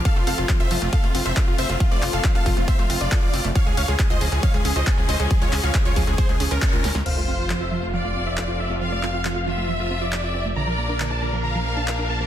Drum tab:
CC |----------------|----------------|----------------|----------------|
HH |x-oxxxoxxxoxx-ox|x-o-xxoxxxoxx-ox|x-oxxxoxxxoxx-ox|xxoxxxoxxxoxxxox|
CP |----x-------x---|--x-x-------x---|----x-------x---|--x-x-------x---|
SD |----------------|----------------|----------------|--------------oo|
BD |o---o---o---o---|o---o-o-o---o---|o---o---o---o---|o---o-o-o---o---|

CC |x---------------|----------------|----------------|
HH |----------------|----------------|----------------|
CP |----x-------x---|--x-x-------x---|----x-------x---|
SD |----------------|----------------|----------------|
BD |----------------|----------------|----------------|